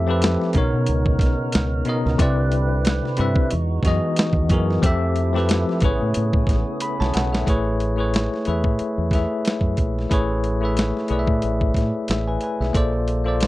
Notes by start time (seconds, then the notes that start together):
Already playing: F2 F3 A3 C4 E4 G4 A4 E5
0.07 F3 C4 G4 A4 B4
0.22 snare, closed hi-hat
0.42 snare
0.53 B1 B2 C#3 B3 D#4 A#4, kick, closed hi-hat
0.57 A#4 C#5
0.73 B2
0.86 C#2, closed hi-hat
1.06 kick
1.19 B1, kick, snare, closed hi-hat
1.52 C#2, snare, closed hi-hat
1.85 B2 B3 D#4 A#4, closed hi-hat
1.89 D#5
2.06 C#2, snare
2.18 C2 C3 D3 C4 E4 B4 D5, kick, closed hi-hat
2.52 closed hi-hat
2.85 snare, closed hi-hat
3.05 snare
3.17 G2 C3 C4 E4 B4, closed hi-hat
3.21 E5
3.36 C3, kick
3.50 E2 E3 G#3 D#4 F#4, closed hi-hat
3.83 F#2 E3 B3 F#4 G#4, kick, closed hi-hat
3.87 D#5, snare
4.16 snare, closed hi-hat
4.33 D#2, kick
4.49 F#2 E3 B3 F#4 G#4 A#4, kick, closed hi-hat
4.71 snare
4.82 F2 F3 A3 C4 E4 G4 A4 E5, kick, closed hi-hat
5.16 closed hi-hat
5.33 F3 C4 G4 A4, snare
5.37 B4
5.49 snare, closed hi-hat
5.69 snare
5.80 A1 C#3 A3 B3 E4 G#4 B4, kick, closed hi-hat
5.85 C#5
6.02 A2
6.14 A2, closed hi-hat
6.33 kick
6.47 A1, kick, closed hi-hat
6.51 snare
6.80 B5, closed hi-hat
7.00 B1 C#5 A5, snare
7.14 B1 A4 F#5, snare, closed hi-hat
7.33 A#1 G#4 E5, snare
7.45 A1 A3 E4 G#4 B4, kick, closed hi-hat
7.50 C#5
7.80 closed hi-hat
7.96 A3 E4 G#4 B4
8.00 C#5
8.14 snare, closed hi-hat
8.34 snare
8.45 E2 A3 E4 G#4 B4, closed hi-hat
8.49 E5
8.64 A2, kick
8.79 muted fingered electric bass stroke, closed hi-hat
8.98 E2
9.11 A3 E4 G#4 B4, kick, closed hi-hat
9.15 E5, snare
9.45 snare, closed hi-hat
9.61 F#2, kick
9.77 A#1, kick, closed hi-hat
9.99 snare
10.10 A1 A3 E4 G#4 B4 C#5, kick, closed hi-hat
10.44 closed hi-hat
10.61 A3 E4 G#4 B4
10.65 E5
10.77 snare, closed hi-hat
10.97 snare
11.08 B1 A3 E4 G#4 B4, closed hi-hat
11.12 D5
11.19 E5
11.27 A2, kick
11.42 A1, closed hi-hat
11.61 kick
11.74 A2, kick, closed hi-hat
11.79 snare
12.08 A1 G#4 E5, snare, closed hi-hat
12.28 B4 G#5
12.41 B4 G#5, closed hi-hat
12.60 B1 G#4 E5, snare
12.73 A#1 A#3 F4 A4 C5 D5, kick, closed hi-hat
13.08 closed hi-hat
13.24 A#3 F4 A4 C5 D5
13.41 snare, closed hi-hat